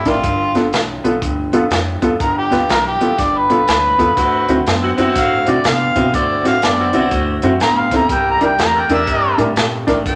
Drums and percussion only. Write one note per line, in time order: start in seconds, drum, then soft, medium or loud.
0.05 kick medium
0.05 snare soft
0.05 closed hi-hat medium
0.24 kick loud
0.24 closed hi-hat medium
0.55 snare soft
0.55 closed hi-hat medium
0.73 snare loud
0.73 closed hi-hat medium
1.05 closed hi-hat medium
1.22 kick loud
1.22 closed hi-hat medium
1.53 closed hi-hat medium
1.71 snare loud
1.71 closed hi-hat medium
2.02 kick medium
2.02 closed hi-hat medium
2.20 kick loud
2.20 closed hi-hat medium
2.52 snare soft
2.52 closed hi-hat medium
2.69 snare loud
2.69 closed hi-hat medium
3.01 closed hi-hat medium
3.18 kick loud
3.18 snare soft
3.18 closed hi-hat medium
3.50 closed hi-hat medium
3.68 snare loud
3.68 closed hi-hat medium
3.99 kick medium
3.99 closed hi-hat medium
4.17 kick loud
4.17 closed hi-hat medium
4.48 closed hi-hat medium
4.66 snare loud
4.66 closed hi-hat medium
4.98 closed hi-hat medium
5.16 kick loud
5.16 snare soft
5.16 closed hi-hat medium
5.46 closed hi-hat medium
5.64 snare loud
5.64 closed hi-hat medium
5.96 kick medium
5.96 closed hi-hat medium
6.14 kick loud
6.14 closed hi-hat medium
6.45 snare soft
6.45 closed hi-hat medium
6.62 snare loud
6.62 closed hi-hat medium
6.93 closed hi-hat medium
7.11 kick loud
7.11 closed hi-hat medium
7.42 closed hi-hat medium
7.60 snare loud
7.60 closed hi-hat medium
7.91 kick medium
7.91 snare soft
7.91 closed hi-hat medium
8.09 kick loud
8.09 closed hi-hat medium
8.41 closed hi-hat medium
8.59 snare loud
8.59 closed hi-hat medium
8.89 closed hi-hat medium
9.07 kick loud
9.07 closed hi-hat medium
9.38 closed hi-hat medium
9.56 snare loud
9.56 closed hi-hat medium
9.88 kick medium
9.88 snare soft
9.88 closed hi-hat medium
10.06 kick loud
10.06 closed hi-hat medium